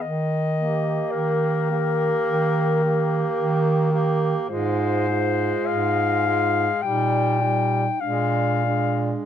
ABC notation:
X:1
M:4/4
L:1/16
Q:1/4=53
K:Eb
V:1 name="Clarinet"
e4 B8- B3 z | c4 f4 g4 f4 |]
V:2 name="Alto saxophone"
z2 G4 G4 G4 G2 | F2 F4 F2 E2 E2 D2 D2 |]
V:3 name="Tenor saxophone" clef=bass
z2 B,4 B,4 B,4 B,2 | A,2 A,4 A,2 G,2 G,2 A,2 A,2 |]
V:4 name="Bass clarinet" clef=bass
E,4 E,4 E,4 E,4 | A,,4 A,,4 B,,4 B,,4 |]